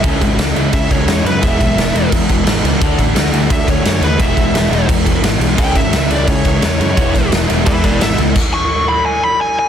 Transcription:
<<
  \new Staff \with { instrumentName = "Lead electric guitar" } { \time 4/4 \key e \mixolydian \tempo 4 = 173 r2 e''8 cis''4 b'8 | e''2 r2 | r2 e''8 cis''4 b'8 | e''2 r2 |
g''8 e''4 d''8 cis''4 cis''4~ | cis''4 r4 <b' e''>8 <b' d''>8 e''8 r8 | r8 cis'''4 b''8 gis''8 b''8 gis''8 gis''8 | }
  \new Staff \with { instrumentName = "Overdriven electric guitar" } { \time 4/4 \key e \mixolydian <cis gis cis' e'>4. <cis gis cis' e'>2~ <cis gis cis' e'>8 | <e gis b e'>4. <e gis b e'>2~ <e gis b e'>8 | <d a d' fis'>4. <d a d' fis'>2~ <d a d' fis'>8 | <e gis b e'>4. <e gis b e'>2~ <e gis b e'>8 |
<cis gis cis' e'>4. <cis gis cis' e'>2~ <cis gis cis' e'>8 | <e gis b e'>4. <e gis b e'>2~ <e gis b e'>8 | r1 | }
  \new Staff \with { instrumentName = "Distorted electric guitar" } { \clef bass \time 4/4 \key e \mixolydian <cis gis cis'>8 <cis gis>8 <cis gis>8 <cis gis>8 <cis gis>8 <cis gis>8 <cis gis>8 <cis gis>8 | <e gis b>8 <e gis>8 <e gis>8 <e gis>8 <e gis>8 <e gis>8 <e gis>8 <e gis>8 | <d a d'>8 <d a>8 <d a>8 <d a>8 <d a>8 <d a>8 <d a>8 <d a>8 | <e gis b>8 <e gis>8 <e gis>8 <e gis>8 <e gis>8 <e gis>8 <e gis>8 <e gis>8 |
<cis gis cis'>8 <cis gis>8 <cis gis>8 <cis gis>8 <cis gis>8 <cis gis>8 <cis gis>8 <cis gis>8 | <e gis b>8 <e gis>8 <e gis>8 <e gis>8 <e gis>8 <e gis>8 <e gis>8 <e gis>8 | r1 | }
  \new Staff \with { instrumentName = "Picked electric bass" } { \clef bass \time 4/4 \key e \mixolydian cis,8 gis,,8 cis,8 cis,8 cis8 cis,8 e,8 fis,8 | e,,8 b,,8 e,,8 e,,8 e,8 e,,8 gis,,8 cis,8 | d,8 a,,8 d,8 d,8 d8 d,8 fis,8 dis,8 | e,,8 b,,8 e,,8 e,,8 e,8 e,,8 gis,,8 b,,8 |
cis,8 gis,,8 cis,8 cis,8 cis8 cis,8 e,8 fis,8 | e,,8 b,,8 e,,8 e,,8 e,8 e,,8 gis,,8 cis,8 | r1 | }
  \new DrumStaff \with { instrumentName = "Drums" } \drummode { \time 4/4 <cymc bd>8 <cymc bd>8 <cymc sn>8 cymc8 <cymc bd>8 <cymc bd>8 <cymc sn>8 cymc8 | <cymc bd>8 <cymc bd>8 <cymc sn>8 cymc8 <cymc bd>8 <cymc bd>8 <cymc sn>8 cymc8 | <cymc bd>8 <cymc bd>8 <cymc sn>8 cymc8 <cymc bd>8 <cymc bd>8 <cymc sn>8 cymc8 | <cymc bd>8 <cymc bd>8 <cymc sn>8 cymc8 <cymc bd>8 <cymc bd>8 <cymc sn>8 cymc8 |
<cymc bd>8 <cymc bd>8 <cymc sn>8 cymc8 <cymc bd>8 <cymc bd>8 <cymc sn>8 cymc8 | <cymc bd>8 <cymc bd>8 <cymc sn>8 cymc8 <cymc bd>8 <cymc bd>8 <cymc sn>8 cymc8 | <cymc bd>4 r4 r4 r4 | }
>>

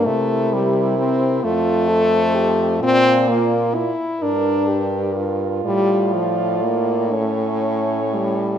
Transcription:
<<
  \new Staff \with { instrumentName = "French horn" } { \time 6/8 \key d \minor \tempo 4. = 43 bes'4. c''4. | d''4 r8 bes'4. | d''4. cis''4. | }
  \new Staff \with { instrumentName = "French horn" } { \time 6/8 \key d \minor e'4. f'8 a'8 g'8 | f'4 r8 bes'8 g'8 f'8~ | f'4. cis'4. | }
  \new Staff \with { instrumentName = "French horn" } { \time 6/8 \key d \minor a8 g8 c'8 a4. | c'8 bes8 e'8 d'4 r8 | g8 f8 bes8 a4 g8 | }
  \new Staff \with { instrumentName = "French horn" } { \clef bass \time 6/8 \key d \minor c4. f,4. | bes,4 r8 g,4. | a,2. | }
>>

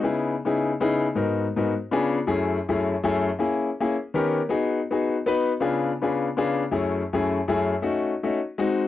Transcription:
\new Staff \with { instrumentName = "Grand piano" } { \time 4/4 \key cis \minor \tempo 4 = 216 <cis b dis' e' gis'>4 r8 <cis b dis' e' gis'>4 r16 <cis b dis' e' gis'>8. r8 | <gis, b dis' fis' ais'>4 r8 <gis, b dis' fis' ais'>8 r8. <cis b d' eis' gis'>8. r8 | <fis, a cis' e' gis'>4 r8 <fis, a cis' e' gis'>4 r16 <fis, a cis' e' gis'>8. r8 | <ais cis' e' gis'>4 r8 <ais cis' e' gis'>8 r8. <dis b cis' g' ais'>8. r8 |
<b dis' fis' gis'>4 r8 <b dis' fis' gis'>4 r16 <b dis' fis' b'>8. r8 | <cis b d' eis' gis'>4 r8 <cis b d' eis' gis'>4 r16 <cis b d' eis' gis'>8. r8 | <fis, a cis' e' gis'>4 r8 <fis, a cis' e' gis'>4 r16 <fis, a cis' e' gis'>8. r8 | <a cis' dis' fis'>4 r8 <a cis' dis' fis'>8 r8. <gis bis dis' fis'>8. r8 | }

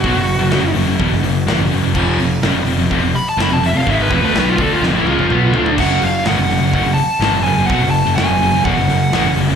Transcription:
<<
  \new Staff \with { instrumentName = "Lead electric guitar" } { \time 4/4 \key fis \minor \tempo 4 = 125 fis'4. r2 r8 | r2 r8 b''16 a''16 b''16 a''16 e''16 f''16 | e''16 b'16 b'16 b'16 b'16 f'16 a'16 f'16 r16 e'16 f'4. | fis''8 eis''8 fis''4 fis''8 a''4 gis''8 |
fis''8 a''8 gis''4 fis''4. r8 | }
  \new Staff \with { instrumentName = "Distorted electric guitar" } { \clef bass \time 4/4 \key fis \minor <b, fis>16 <fis, cis>8 <fis, cis>16 <fis, cis>16 <fis, cis>16 <fis, cis>16 <fis, cis>16 <e, b,>16 <fis, cis>16 <fis, cis>8 <a, e>16 <fis, cis>16 <fis, cis>16 <fis, cis>16 | <f, c f>8 <f, c>8 <fis, cis>16 <f, c>16 <f, c>16 <f, c>16 <f, c>16 <f, c>16 r8 <fis, cis>16 <f, c>16 <f, c>16 <f, c>16 | <gis, dis gis>8 <f, c>16 <d a>16 <b, fis b>8 <d a d'>8 <f, c>16 <a, e>16 <cis gis>16 <f, c>16 <b, fis b>8 <d a d'>8 | <fis, cis fis>8 <fis, cis>8 <gis, dis>16 <fis, cis>16 <fis, cis>16 <fis, cis>16 <fis, cis>16 <fis, cis>16 r8 <gis, dis>16 <fis, cis>16 <fis, cis>16 <fis, cis>16 |
<b, fis>16 <fis, cis>8 <fis, cis>16 <fis, cis>16 <fis, cis>16 <fis, cis>16 <fis, cis>16 <e, b,>16 <fis, cis>16 <fis, cis>8 <a, e>16 <fis, cis>16 <fis, cis>16 <fis, cis>16 | }
  \new Staff \with { instrumentName = "Distorted electric guitar" } { \clef bass \time 4/4 \key fis \minor <b, fis>16 <fis, cis>8 <fis, cis>16 <fis, cis>16 <fis, cis>16 <fis, cis>16 <fis, cis>16 <e, b,>16 <fis, cis>16 <fis, cis>8 <a, e>16 <fis, cis>16 <fis, cis>16 <fis, cis>16 | <f, c f>8 <f, c>8 <fis, cis>16 <f, c>16 <f, c>16 <f, c>16 <f, c>16 <f, c>16 r8 <fis, cis>16 <f, c>16 <f, c>16 <f, c>16 | <gis, dis gis>8 <f, c>16 <d a>16 <b, fis b>8 <d a d'>8 <f, c>16 <a, e>16 <cis gis>16 <f, c>16 <b, fis b>8 <d a d'>8 | <fis, cis fis>8 <fis, cis>8 <gis, dis>16 <fis, cis>16 <fis, cis>16 <fis, cis>16 <fis, cis>16 <fis, cis>16 r8 <gis, dis>16 <fis, cis>16 <fis, cis>16 <fis, cis>16 |
<b, fis>16 <fis, cis>8 <fis, cis>16 <fis, cis>16 <fis, cis>16 <fis, cis>16 <fis, cis>16 <e, b,>16 <fis, cis>16 <fis, cis>8 <a, e>16 <fis, cis>16 <fis, cis>16 <fis, cis>16 | }
  \new Staff \with { instrumentName = "Overdriven electric guitar" } { \clef bass \time 4/4 \key fis \minor <b, fis>16 <fis, cis>8 <fis, cis>16 <fis, cis>16 <fis, cis>16 <fis, cis>16 <fis, cis>16 <e, b,>16 <fis, cis>16 <fis, cis>8 <a, e>16 <fis, cis>16 <fis, cis>16 <fis, cis>16 | <f, c f>8 <f, c>8 <fis, cis>16 <f, c>16 <f, c>16 <f, c>16 <f, c>16 <f, c>16 r8 <fis, cis>16 <f, c>16 <f, c>16 <f, c>16 | <gis, dis gis>8 <f, c>16 <d a>16 <b, fis b>8 <d a d'>8 <f, c>16 <a, e>16 <cis gis>16 <f, c>16 <b, fis b>8 <d a d'>8 | <fis, cis fis>8 <fis, cis>8 <gis, dis>16 <fis, cis>16 <fis, cis>16 <fis, cis>16 <fis, cis>16 <fis, cis>16 r8 <gis, dis>16 <fis, cis>16 <fis, cis>16 <fis, cis>16 |
<b, fis>16 <fis, cis>8 <fis, cis>16 <fis, cis>16 <fis, cis>16 <fis, cis>16 <fis, cis>16 <e, b,>16 <fis, cis>16 <fis, cis>8 <a, e>16 <fis, cis>16 <fis, cis>16 <fis, cis>16 | }
  \new Staff \with { instrumentName = "Picked electric bass" } { \clef bass \time 4/4 \key fis \minor b,,16 fis,,8 fis,,16 fis,,16 fis,,16 fis,,16 fis,,16 e,,16 fis,,16 fis,,8 a,,16 fis,,16 fis,,16 fis,,16 | f,,8 f,,8 fis,,16 f,,16 f,,16 f,,16 f,,16 f,,16 r8 fis,,16 f,,16 f,,16 f,,16 | gis,,8 f,,16 d,16 b,,8 d,8 f,,16 a,,16 cis,16 f,,16 b,,8 d,8 | fis,,8 fis,,8 gis,,16 fis,,16 fis,,16 fis,,16 fis,,16 fis,,16 r8 gis,,16 fis,,16 fis,,16 fis,,16 |
b,,16 fis,,8 fis,,16 fis,,16 fis,,16 fis,,16 fis,,16 e,,16 fis,,16 fis,,8 a,,16 fis,,16 fis,,16 fis,,16 | }
  \new DrumStaff \with { instrumentName = "Drums" } \drummode { \time 4/4 <hho bd>8 hho8 <hho sn>8 hho8 <hho bd>8 hho8 <hho sn>8 hho8 | <cymc bd>8 hho8 <hho sn>8 hho8 <hho bd>8 hho8 <hho sn>8 hho8 | <hho bd>8 <hho bd>8 <hho sn>8 <hho bd>8 sn8 tommh16 tommh16 toml8 tomfh16 tomfh16 | <cymc bd>8 hho8 <hho sn>8 hho8 <hho bd>8 hho8 <hho sn>8 hho8 |
<hho bd>8 hho8 <hho sn>8 hho8 <hho bd>8 hho8 <hho sn>8 hho8 | }
>>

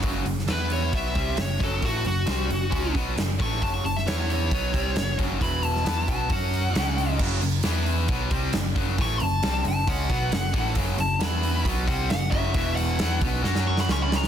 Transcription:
<<
  \new Staff \with { instrumentName = "Lead electric guitar" } { \time 4/4 \key e \lydian \tempo 4 = 134 r4 b'8 cis''8 e''4 cis''8 a'8 | fis'8 fis'2 r4 cis'''8 | a''16 cis'''16 a''16 e''16 cis''8 cis''2 r8 | b''8 a''4 a''8 fis''2 |
r1 | cis'''8 a''4 a''8 fis''2 | r8 a''8 b''4 r8 fis''8 fis''8 e''8~ | e''8 fis''4 r4 cis'''16 b''16 cis'''16 b''16 ais''8 | }
  \new Staff \with { instrumentName = "Distorted electric guitar" } { \clef bass \time 4/4 \key e \lydian <fis, cis fis>8 <fis, cis>8 <e b e'>4 <b, fis b>8 <bis, g bis>8 <fis, cis>8 <fis, cis fis>8 | <a, e a>8 <fis, cis>8 <bis, g bis>8 <fis, cis>8 <cis gis cis'>8 <b, fis b>8 <fis, cis>8 <a, e a>8 | <fis, cis fis>8 <fis, cis>8 <e b e'>4 <b, fis b>8 <bis, g bis>8 <fis, cis>8 <fis, cis fis>8 | <e, b, e>4 <e b e'>8 <b, fis b>8 <fis cis' fis'>4 <cis gis cis'>4 |
<fis, cis fis>8 <fis, cis>8 <e b e'>4 <b, fis b>8 <bis, g bis>8 <fis, cis>8 <fis, cis fis>8 | <a, e a>8 <fis, cis>8 <bis, g bis>8 <fis, cis>8 <cis gis cis'>8 <b, fis b>8 <fis, cis>8 <a, e a>8 | <fis, cis fis>8 <fis, cis>8 <e b e'>4 <b, fis b>8 <bis, g bis>8 <fis, cis>8 <fis, cis fis>8 | <e, b, e>4 <e b e'>8 <b, fis b>8 <fis cis' fis'>4 <cis gis cis'>4 | }
  \new Staff \with { instrumentName = "Overdriven electric guitar" } { \clef bass \time 4/4 \key e \lydian <fis, cis fis>8 <fis, cis>8 <e b e'>4 <b, fis b>8 <bis, g bis>8 <fis, cis>8 <fis, cis fis>8 | <a, e a>8 <fis, cis>8 <bis, g bis>8 <fis, cis>8 <cis gis cis'>8 <b, fis b>8 <fis, cis>8 <a, e a>8 | <fis, cis fis>8 <fis, cis>8 <e b e'>4 <b, fis b>8 <bis, g bis>8 <fis, cis>8 <fis, cis fis>8 | <e, b, e>4 <e b e'>8 <b, fis b>8 <fis cis' fis'>4 <cis gis cis'>4 |
<fis, cis fis>8 <fis, cis>8 <e b e'>4 <b, fis b>8 <bis, g bis>8 <fis, cis>8 <fis, cis fis>8 | <a, e a>8 <fis, cis>8 <bis, g bis>8 <fis, cis>8 <cis gis cis'>8 <b, fis b>8 <fis, cis>8 <a, e a>8 | <fis, cis fis>8 <fis, cis>8 <e b e'>4 <b, fis b>8 <bis, g bis>8 <fis, cis>8 <fis, cis fis>8 | <e, b, e>4 <e b e'>8 <b, fis b>8 <fis cis' fis'>4 <cis gis cis'>4 | }
  \new Staff \with { instrumentName = "Picked electric bass" } { \clef bass \time 4/4 \key e \lydian fis,,8 fis,,8 e,4 b,,8 bis,,8 fis,,8 fis,,8 | a,,8 fis,,8 bis,,8 fis,,8 cis,8 b,,8 fis,,8 a,,8 | fis,,8 fis,,8 e,4 b,,8 bis,,8 fis,,8 fis,,8 | e,,4 e,8 b,,8 fis,4 cis,4 |
fis,,8 fis,,8 e,4 b,,8 bis,,8 fis,,8 fis,,8 | a,,8 fis,,8 bis,,8 fis,,8 cis,8 b,,8 fis,,8 a,,8 | fis,,8 fis,,8 e,4 b,,8 bis,,8 fis,,8 fis,,8 | e,,4 e,8 b,,8 fis,4 cis,4 | }
  \new DrumStaff \with { instrumentName = "Drums" } \drummode { \time 4/4 <hho bd>8 hho16 sn16 <hho sn>8 hho8 <hho bd>8 <hho bd>8 <hho sn>8 <hho bd>8 | <hho bd>8 hho8 <hho sn>8 hho8 <hho bd>8 <hho bd>8 <hho sn>8 <hho bd>8 | <hho bd>8 hho16 sn16 <hho sn>8 hho8 <hho bd>8 <hho bd>8 <hho sn>8 <hho bd>8 | <hho bd>8 hho16 sn16 <hho sn>8 <hho bd>8 <hho bd>8 hho8 <hho sn>8 hho8 |
<cymc bd>8 hho8 <hho sn>8 hho8 <hho bd>8 <hho bd>8 <hho sn>8 <hho bd>8 | <hho bd>8 hho8 <hho sn>8 hho8 <hho bd>8 <hho bd>8 <hho sn>8 <hho bd>8 | <hho bd>8 hho8 <hho sn>8 hho8 <hho bd>8 <hho bd>8 <hho sn>8 <hho bd>8 | <hho bd>8 hho8 <hho sn>8 <hho bd>8 sn16 sn8 sn16 sn8 sn16 sn16 | }
>>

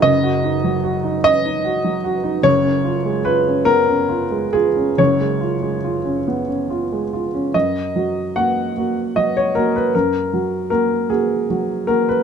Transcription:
\new Staff \with { instrumentName = "Upright piano" } { \time 6/8 \key dis \minor \tempo 4. = 50 << { dis''4. dis''4. | cis''4 b'8 ais'4 gis'8 | cis''4. r4. | dis''4 fis''4 dis''16 cis''16 ais'16 b'16 |
ais'4 ais'8 gis'4 ais'16 b'16 | } \\ { <fis,, fis, dis'>16 fis'16 dis'16 fis16 fis'16 dis'16 cis'16 dis'16 fis'16 fis16 fis'16 dis'16 | <fis,, fis,>16 cis'16 eis'16 gis16 eis'16 cis'16 b16 cis'16 eis'16 gis16 eis'16 cis'16 | <fis,, fis,>16 gis16 eis'16 gis16 eis'16 cis'16 b16 cis'16 eis'16 gis16 eis'16 cis'16 | fis,8 <fis fis'>8 <ais fis'>8 <ais fis'>8 <fis fis'>8 <ais fis'>8 |
fis,8 <fis fis'>8 <ais fis'>8 <ais fis'>8 <fis fis'>8 <ais fis'>8 | } >> }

